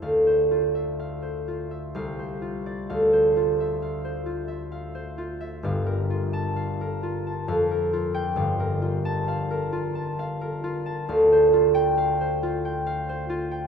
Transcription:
<<
  \new Staff \with { instrumentName = "Harp" } { \time 3/4 \key d \minor \tempo 4 = 66 << { f''2 f''4 | f''2.~ | f''8. a''4~ a''16 r8. g''16~ | g''8. a''2~ a''16~ |
a''8. g''2~ g''16 | } \\ { <e' c'' e'' a''>16 c''16 f'16 e''16 f''16 c''16 f'16 e''16 r16 c''16 f'16 d''16~ | d''16 c''16 f'16 e''16 f''16 c''16 f'16 e''16 f''16 c''16 f'16 e''16 | f''16 bes'16 f'8 f''16 bes'16 f'16 a''16 f''16 bes'16 f'8 | f''16 bes'16 f'8 f''16 bes'16 f'16 a''16 f''16 bes'16 f'16 a''16 |
f''16 c''16 f'8 f''16 c''16 f'16 g''16 f''16 c''16 f'16 g''16 | } >> }
  \new Staff \with { instrumentName = "Harp" } { \clef bass \time 3/4 \key d \minor d,2 c,4 | d,2. | <g,, g,>2 f,4 | <g,, g,>2. |
d,2. | }
>>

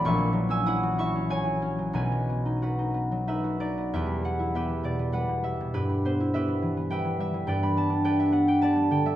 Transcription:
<<
  \new Staff \with { instrumentName = "Harp" } { \time 3/4 \key e \minor \tempo 4 = 100 << { <b'' cis''' e'''>8. e'''16 dis'''8 cis'''8 gis''4 | gis''4 fis''4 e''8 d''8 | e''8 fis''8 e''8 d''8 fis''8 e''8 | b'8 c''8 e''4 g''8 e''8 |
g''16 b''16 a''8 g''16 e''16 fis''16 g''16 a''8 g''16 e''16 | } \\ { <e'' fis''>8. gis''16 fis''8 e''8 cis''4 | b'4 b'4 b'4 | <g' b'>4 <g' b'>4 b'4 | <e' g'>4 <g' b'>4 <b' e''>4 |
<b' d''>4 <b' d''>4 d''4 | } >> }
  \new Staff \with { instrumentName = "Harp" } { \time 3/4 \key e \minor <ais,, ais, fis e' fis'>16 e16 fis16 cis'16 e'16 fis'16 e'16 cis'16 fis'16 e'16 cis'16 fis16 | <b,, b,>16 fis16 b16 dis'16 fis'16 dis'16 b16 fis16 dis'16 fis'16 dis'16 b16 | e,16 g16 b16 e'16 b16 g16 b,16 b16 g16 b,16 g16 b,16 | g,16 g16 b16 e'16 b16 g16 e16 b16 g16 e16 g16 e16 |
g,16 g16 b16 d'16 g'16 d'16 b16 g'16 b16 g16 d16 g16 | }
>>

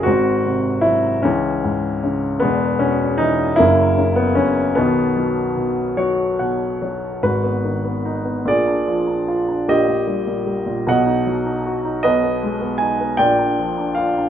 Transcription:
<<
  \new Staff \with { instrumentName = "Grand piano" } { \time 6/8 \key b \major \tempo 4. = 51 << { fis'4 e'8 cis'4 r8 | b8 cis'8 dis'8 e'8. b16 cis'8 | b4. cis''4. | \key gis \minor b'4. d''4. |
dis''4 r8 fis''4 r8 | dis''4 gis''8 g''4 eis''8 | } \\ { bis4. e4. | gis4. ais4. | dis4. fis'4. | fis'4. gis'4. |
g'4. dis''4. | b'4. d''4. | } >> }
  \new Staff \with { instrumentName = "Grand piano" } { \clef bass \time 6/8 \key b \major <gis,, gis,>8 bis,8 fis8 cis,8 gis,8 cis8 | <e,, e,>8 b,8 e8 <fis,, fis,>8 cis8 fis,8 | <b,, b,>8 fis8 b,8 fis8 <b, fis''>8 <fis cis''>8 | \key gis \minor <gis,, gis,>16 b16 dis16 b16 dis'16 b16 <ais,, ais,>16 d'16 eis16 d'16 eis'16 d'16 |
<ais,, ais,>16 ais,16 g16 ais,16 g16 ais,16 <b,, b,>16 dis'16 fis16 dis'16 fis'16 dis'16 | <b,, b,>16 b16 gis16 b16 dis'16 b16 <ais,, ais,>16 d'16 eis16 d'16 eis'16 d'16 | }
>>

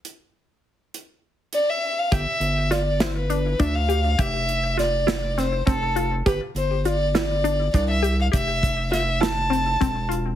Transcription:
<<
  \new Staff \with { instrumentName = "Violin" } { \time 7/8 \key g \mixolydian \tempo 4 = 102 r2 r8 d''16 e''8 f''16 | e''4 d''8 c''16 b'8. e''16 f''8. | e''4 d''4 c''8 a'8. r16 | b'8 c''8 d''8 d''4 d''16 e''8 f''16 |
e''4 e''8 a''4. r8 | }
  \new Staff \with { instrumentName = "Synth arpeggio sound" } { \time 7/8 \key g \mixolydian r2. r8 | g'4 f'8 e'8 d'8 d'8 g'8 | g'4 f'8 e'8 c'8 c'8 f'8 | g'4 f'8 e'8 d'8 d'8 g'8 |
g'4 f'8 e'8 c'8 c'8 f'8 | }
  \new Staff \with { instrumentName = "Analog synth bass" } { \clef bass \time 7/8 \key g \mixolydian r2. r8 | g,,16 r16 g,,2 d,4 | f,,2~ f,,8 f,,4 | g,,16 r16 g,,2 c,4 |
f,,2~ f,,8 e,,4 | }
  \new DrumStaff \with { instrumentName = "Drums" } \drummode { \time 7/8 hh4. hh4 hh4 | <hh bd>8 hh8 <hh sn>8 <hh sn>8 hh8 <hh bd>8 hh8 | <hh bd>8 hh8 <hh sn>8 <hh sn>8 <hh sn>8 <hh bd>8 hh8 | <hh bd>8 hh8 hh8 <hh sn>8 hh8 <hh bd>8 hh8 |
<hh bd>8 <hh bd>8 <hh sn>8 <hh sn>8 hh8 <hh bd>8 hh8 | }
>>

